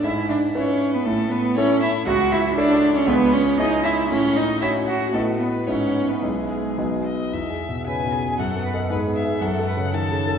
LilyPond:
<<
  \new Staff \with { instrumentName = "Violin" } { \time 2/4 \key a \major \tempo 4 = 116 e''8 d''8 cis''8. b'16 | a'8 b'8 cis''8 e''8 | fis''8 e''8 d''8. cis''16 | \key e \major b'8 cis''8 dis''8 e''8 |
cis''8 dis''8 e''8 fis''8 | a'8 b'8 cis''8. b'16 | gis'4. dis''8 | e''4 gis''4 |
fis''4 b'8 e''8 | fis''4 a''4 | }
  \new Staff \with { instrumentName = "Grand piano" } { \time 2/4 \key a \major gis,4 <e' b' e''>4 | a,4 <e' a' cis''>4 | cis,4 <e' a' cis''>4 | \key e \major cis,4 <e' gis' cis''>4 |
a,4 <cis' fis' cis''>4 | <a, b fis' dis''>4 <gis, b e' e''>4 | <b,, b e' e''>4 <b,, b fis' dis''>4 | \tuplet 3/2 { e,8 gis'8 b,8 cis8 b,8 gis'8 } |
\tuplet 3/2 { fis,8 b8 <a' dis''>8 gis,8 b8 <gis' e''>8 } | \tuplet 3/2 { fis,8 a'8 cis8 dis8 cis8 a'8 } | }
  \new Staff \with { instrumentName = "Cello" } { \time 2/4 \key a \major e'8 d'8 cis'8. b16 | a8 b8 cis'8 e'8 | fis'8 e'8 d'8. cis'16 | \key e \major b8 cis'8 dis'8 e'8 |
cis'8 dis'8 e'8 fis'8 | a8 b8 cis'8. b16 | gis4. r8 | r4 b'8 gis'8 |
a'8 b'8 gis'4 | a'8 b'8 a'4 | }
>>